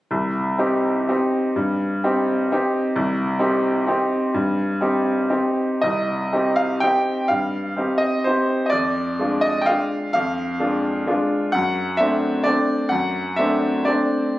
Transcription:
0.11 C2
0.58 C4 D#4 G4
1.09 C4 D#4 G4
1.56 G2
2.04 C4 D#4 G4
2.52 C4 D#4 G4
2.96 C2
3.39 C4 D#4 G4
3.87 C4 D#4 G4
4.34 G2
4.81 C4 D#4 G4
5.30 C4 D#4 G4
5.81 C2 D#5
6.33 C4 D#4 G4
6.56 F5
6.80 C4 D#4 G4 G5
7.28 G2 F5
7.77 C4 D#4 G4
7.98 D#5
8.24 C4 D#4 G4 C5
8.66 D5 D#5
8.72 F2
9.19 G#3 D4 F4
9.41 D#5
9.62 G5
9.66 G#3 D4 F4 F5
10.13 F2 F5
10.60 G#3 D4 F4
11.07 G#3 D4 F4
11.52 F#2 F#5
11.97 A3 C4 D4 E5
12.44 A3 C4 D4 D5
12.89 F#2 F#5
13.36 A3 C4 D4 E5
13.85 A3 C4 D4 D5

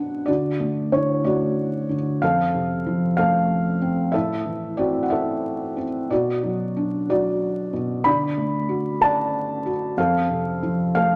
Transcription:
Already playing: B2 F#3 D4 F#4 B4 F#5
0.26 D3 F#4 D5
0.60 A3
0.92 D3 E4 C#5
1.24 A3 F#4 D5
1.89 D3
2.22 F2 A4 F5
2.54 C3
2.86 F3
3.17 A3 A4 F5
3.82 C4
4.12 A2 A4 E5
4.46 E3
4.77 C4 F#4 D5
5.03 F#5
5.10 E4 A4 E5
5.77 C4
6.10 B2 F#4 D5
6.43 F#3
6.77 D4
7.09 F#3 F#4 D5
7.73 B2
8.04 D3 D5 B5
8.38 A3
8.69 F#4
9.01 A4 D5 A5
9.66 F#4
9.97 F2 A4 F5
10.30 C3
10.63 F3
10.95 A3 A4 F5

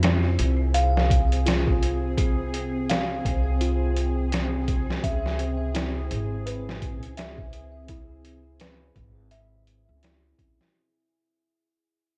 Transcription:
Already playing: F2 C4 G#4
0.03 C4, snare, closed hi-hat
0.39 C2, closed hi-hat
0.74 F5, closed hi-hat
0.97 snare
1.10 kick, closed hi-hat
1.32 closed hi-hat
1.46 F4, snare, closed hi-hat
1.67 kick
1.83 closed hi-hat
2.18 C4, kick, closed hi-hat
2.54 closed hi-hat
2.89 F5, snare, closed hi-hat
3.25 C2, kick, closed hi-hat
3.61 F4, closed hi-hat
3.97 closed hi-hat
4.32 C4, snare, closed hi-hat
4.68 kick, closed hi-hat
4.90 snare
5.04 C#2 E5, kick, closed hi-hat
5.26 snare
5.40 closed hi-hat
5.75 E4, snare, closed hi-hat
6.11 G#1, closed hi-hat
6.46 B4, closed hi-hat
6.69 snare
6.82 kick, closed hi-hat
7.03 C#2, closed hi-hat
7.18 E5, snare, closed hi-hat
7.38 kick
7.53 closed hi-hat
7.88 E4, kick, closed hi-hat
8.25 closed hi-hat
8.60 B4, snare, closed hi-hat
8.96 G#1, kick, closed hi-hat
9.31 E5, closed hi-hat
9.67 closed hi-hat
9.89 C#2
10.03 E4, snare, closed hi-hat
10.39 C#2, kick, closed hi-hat
10.61 snare

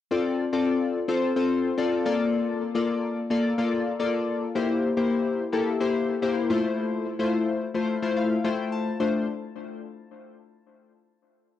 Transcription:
0.11 C4 F4 A4 D5
0.53 C4 F4 A4 D5
1.08 C4 F4 A4 C5
1.36 C4 F4 A4 C5
1.77 C4 F4 A4 D5
2.05 A#3 F4 A4 D5
2.75 A#3 F4 A4 D5
3.30 A#3 F4 A4 D5
3.58 A#3 F4 A4 D5
4.00 A#3 F4 A4 D5
4.55 A#3 E4 G4 C5
4.97 A#3 E4 G4 C5
5.53 A#3 E4 G4 A4
5.80 A#3 E4 G4 C5
6.22 A#3 E4 G4 C5
6.50 A3 E4 F4 C5
7.19 A3 E4 F4 C5
7.74 A3 E4 F4 C5
8.02 A3 E4 F4 C5
8.17 F5
8.44 A3 E4 F4 C5 G5
8.72 A5
9.00 A3 D4 F4 C5

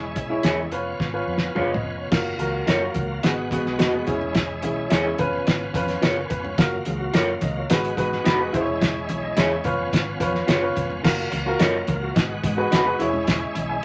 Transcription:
Already playing: E1 G#3 C#4 E4 G#4 C#5
0.16 B1, kick, closed hi-hat
0.30 E4 G#4 C#5
0.43 E2 E4 G#4 C#5, snare, closed hi-hat
0.71 F1 B3 F4 B4 C#5, closed hi-hat
1.00 G#1, kick, snare
1.13 F4 B4 C#5
1.27 F2
1.38 snare
1.55 F#1 F4 B4 C#5 F5, mid tom
1.70 D#5
1.74 floor tom
1.83 F1
1.98 C#5
2.11 F#1 F#3 A#3 F4 F#4 A#4, kick, snare, crash
2.38 C#2 F4 F#4 A#4, closed hi-hat, high conga
2.67 F#2 F4 A#4 C#5, snare, closed hi-hat, muted conga
2.81 F4 F#4 A#4
2.94 C#2, kick, closed hi-hat, high conga, low conga
3.23 G#1 G#3 B3 F#4 G#4, snare, closed hi-hat
3.51 B3 F#4 G#4, kick, closed hi-hat, high conga
3.66 B1, snare
3.79 F1 F#4 B4 D#5, snare, closed hi-hat
3.93 B3 F#4 G#4
4.06 E1 C#4 E4 G#4, kick, closed hi-hat, muted conga
4.21 low conga
4.35 kick, snare, closed hi-hat
4.62 B1 C#4 E4 G#4, closed hi-hat, high conga
4.90 E2 E4 G#4 C#5, snare, closed hi-hat, muted conga
5.04 C#4 E4 G#4
5.18 F1 B3 C#4 F4 B4, kick, closed hi-hat, muted conga, high conga, low conga
5.47 G#1, snare, closed hi-hat
5.74 F2 C#4 F4 B4, kick, closed hi-hat, high conga
5.88 snare, closed hi-hat
6.02 F#1 F4 A#4 B4 C#5, snare, closed hi-hat
6.30 F1 B4, kick, closed hi-hat
6.43 C#5, low conga
6.58 F#1 F#3 A#3 F4 F#4 A#4, kick, snare, closed hi-hat
6.85 C#2 G#4, closed hi-hat, muted conga, high conga
7.00 F#4
7.13 F#2 F4 A#4 C#5, snare, closed hi-hat
7.29 C#5
7.41 C#2 D#5, kick, closed hi-hat, muted conga, high conga, low conga
7.56 C#5
7.69 G#1 G#3 B3 F#4 G#4 B4, snare, closed hi-hat, muted conga
7.85 closed hi-hat
7.97 G#2 F#4 G#4 B4, kick, closed hi-hat, muted conga, high conga
8.12 snare
8.24 F1 D#4 F#4 B4, snare, closed hi-hat
8.39 F#4 G#4 B4
8.53 E1 G#3 C#4 E4 G#4 C5, kick, closed hi-hat
8.61 C#5
8.67 low conga
8.82 kick, snare, closed hi-hat
9.09 B1 C#5, closed hi-hat, muted conga, high conga
9.24 D#5
9.36 E2 E4 G#4 C#5 E5, snare, closed hi-hat
9.52 C#5
9.64 F1 B3 C#4 F4 B4 C#5, kick, closed hi-hat, muted conga, high conga, low conga
9.93 G#1, kick, snare, closed hi-hat, muted conga, low conga
10.20 F2 F4 B4 C#5, kick, closed hi-hat, muted conga, high conga
10.35 snare
10.47 F#1 F4 B4 C#5, snare, closed hi-hat
10.62 F4 B4 C#5
10.76 F1, kick, closed hi-hat, muted conga, high conga
10.90 low conga
11.03 F#1 F#3 A#3 F4 F#4 A#4, kick, snare, crash
11.31 C#2, closed hi-hat, high conga
11.46 F4 F#4 A#4
11.59 F#2 F4 A#4 C#5 D#5, snare, closed hi-hat
11.74 C#5
11.87 C#2 A#4, kick, closed hi-hat, high conga, low conga
12.02 F#4
12.14 G#1 G#3 B3 F#4, kick, snare, closed hi-hat
12.43 G#2, kick, closed hi-hat, high conga
12.57 F#4 G#4 B4
12.71 F1 D#4 F#4 B4, snare, closed hi-hat, muted conga
12.85 F#4 G#4 B4
12.99 E1 C#4 E4 G#4 C#5, closed hi-hat, high conga
13.14 low conga
13.27 kick, snare, closed hi-hat, muted conga
13.55 B1, closed hi-hat, high conga
13.69 G#5

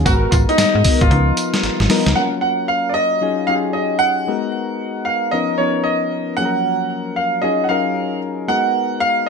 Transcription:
0.05 G#1 G#3 B3 F#4 A#4, kick, closed hi-hat, tambourine
0.31 G#1 F4, kick, closed hi-hat, tambourine
0.49 D#4, closed hi-hat
0.58 G#2, snare, closed hi-hat, tambourine
0.75 G#2
0.84 B3 F#4 A#4, kick, open hi-hat, tambourine
1.01 G#1 F4, kick, closed hi-hat
1.11 C#2 F3 B3 D#4 A#4, closed hi-hat
1.37 closed hi-hat, tambourine
1.54 snare, closed hi-hat
1.63 G#1, snare, closed hi-hat
1.80 G#1, snare
1.89 F3 B3 D#4 F4 A#4, snare, open hi-hat
2.06 C#2, snare, closed hi-hat
2.15 F#3 A#3 C#4 F4 A#4 F#5
2.41 F#5
2.68 F5
2.89 D5
2.94 D#5
3.21 F#3 C#4 D#4 F4 G#4
3.47 F#3 C#4 D#4 F4 G4 F5
3.56 G#4
3.73 D#5
3.99 F#5
4.27 G#3 B3 D#4 F#4 A#4
5.05 F5
5.31 F3 B3 C#4 D#4 A#4 D#5
5.58 F3 B3 C#4 D#4 A#4 C#5
5.84 D#5
6.37 F3 F#3 A#3 C#4 G#4 F#5
6.45 A#4
7.16 F5
7.42 F#3 C#4 D#4 F4 G#4 D#5
7.64 F#5
7.69 F#3 C#4 D#4 F4 A#4 F5
8.48 G#3 B3 D#4 F#4 A#4 F#5
9.00 F5

